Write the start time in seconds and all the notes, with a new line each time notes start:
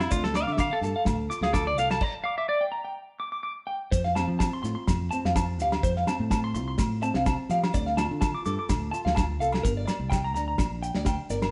Already playing: F4 A4
0.00 E4, snare, low agogo
0.11 D2 D3 F4 D5, kick, maracas
0.24 A4, snare
0.34 D5 D6, snare, low agogo, maracas
0.43 F5
0.47 D3 D6, snare
0.52 E5
0.57 F3 F5 D6, kick, snare, low agogo, maracas
0.71 A4 F5
0.81 G2 A4 A5, snare, maracas
0.96 F5
1.05 D2 A2, kick, snare, low agogo, maracas
1.30 F4 D6, maracas
1.41 D2 G#4 F5, snare
1.53 F3 A4 D6, kick, snare, low agogo, maracas
1.67 D5
1.75 C2 A4 F5, maracas
1.91 A5, snare, low agogo
2.01 D5 A#5, kick, crash
2.15 A5
2.24 F5 D6
2.38 E5 D6
2.48 D5 D6
2.61 G5
2.72 A#5
2.85 G5
3.20 D6
3.32 D6
3.43 D6
3.67 G5
3.91 F2 C5, kick, snare, maracas
4.04 F5, snare
4.15 C4 A5, snare, low agogo, maracas
4.28 F3
4.39 F3 A5, kick, snare, low agogo, maracas
4.53 C6
4.63 A2 F4 C6, snare, maracas
4.75 C6
4.87 F2 C3, kick, snare, low agogo, maracas
5.11 C4 A5, maracas
5.25 F2 F5, snare
5.35 F3 A5, kick, snare, low agogo, maracas
5.60 D2 G4 F5, snare, maracas
5.72 snare, low agogo
5.83 F2 C5, kick, maracas
5.96 F5, snare
6.07 C4 A5, snare, low agogo, maracas
6.20 A2
6.30 F3 A5, kick, snare, low agogo, maracas
6.44 C6
6.54 C2 F4 C6, maracas
6.68 C6
6.78 A2 C3, kick, snare, low agogo, maracas
7.03 C4 A5, maracas
7.14 C2 F5, snare
7.25 F3 A5, kick, snare, low agogo, maracas
7.49 F3 G4 F5, snare, maracas
7.63 snare, low agogo
7.74 D2 D3 D5, kick, snare, maracas
7.86 F5, snare
7.97 F4 A5, snare, low agogo, maracas
8.11 D3
8.21 A5, kick, snare, low agogo, maracas
8.35 D6
8.46 G2 A4 D6, snare, maracas
8.59 D6
8.69 D2 A2, kick, snare, low agogo, maracas
8.91 F4 A5, maracas
9.05 D2 F5, snare
9.15 F3 A5, kick, snare, low agogo, maracas
9.40 C2 A4 F5, maracas
9.53 snare, low agogo
9.63 G1 G2 A#4, kick, snare, maracas
9.77 D5
9.86 D5, muted nylon-string guitar stroke, snare, low agogo, maracas
10.00 C2
10.10 G5, kick, snare, low agogo, maracas
10.24 A#5
10.34 D2 D4 A#5, snare, maracas
10.48 A#5
10.58 A#1 D3, kick, snare, low agogo, maracas
10.83 G5, maracas
10.95 D2 D5, snare
11.05 G3 G5, kick, snare, low agogo, maracas
11.30 G1 A#4 D5, snare, maracas
11.42 snare, low agogo